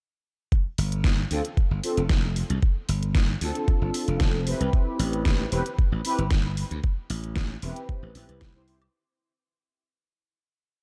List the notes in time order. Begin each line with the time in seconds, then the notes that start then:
0.52 kick, closed hi-hat
0.78 G1, open hi-hat
0.92 closed hi-hat
1.04 kick, snare, closed hi-hat
1.31 D2 C4 D4 F4 A4, open hi-hat
1.45 closed hi-hat
1.57 muted slap bass stroke, kick, closed hi-hat
1.71 G1
1.83 C4 D4 F4 A4, open hi-hat
1.97 F1, closed hi-hat
2.09 kick, snare, closed hi-hat
2.36 open hi-hat
2.50 C2, closed hi-hat
2.62 kick, closed hi-hat
2.89 G1, open hi-hat
3.03 closed hi-hat
3.15 kick, snare, closed hi-hat
3.40 D2 C4 D4 F4 A4, open hi-hat
3.55 closed hi-hat
3.68 kick, closed hi-hat
3.82 G1
3.94 open hi-hat
4.08 F1, closed hi-hat
4.20 kick, snare, closed hi-hat
4.46 C4 E4 G4 B4, open hi-hat
4.60 C2, closed hi-hat
4.73 kick, closed hi-hat
4.99 A1, open hi-hat
5.13 closed hi-hat
5.25 kick, snare, closed hi-hat
5.52 E1 C4 E4 G4 B4, open hi-hat
5.66 closed hi-hat
5.78 muted slap bass stroke, kick, closed hi-hat
5.92 A1
6.05 C4 E4 G4 B4, open hi-hat
6.18 G1, closed hi-hat
6.31 kick, snare, closed hi-hat
6.57 open hi-hat
6.71 D2, closed hi-hat
6.84 kick, closed hi-hat
7.10 A1, open hi-hat
7.24 closed hi-hat
7.36 kick, snare, closed hi-hat
7.62 E1 C4 E4 G4 B4, open hi-hat
7.76 closed hi-hat
7.89 kick, closed hi-hat
8.03 A1
8.15 A1 C4 E4 G4 B4, open hi-hat
8.29 C2, closed hi-hat
8.41 kick, snare, closed hi-hat
8.55 C4 E4 G4 C5
8.67 C4 E4 G4 C5, open hi-hat
8.82 closed hi-hat, high woodblock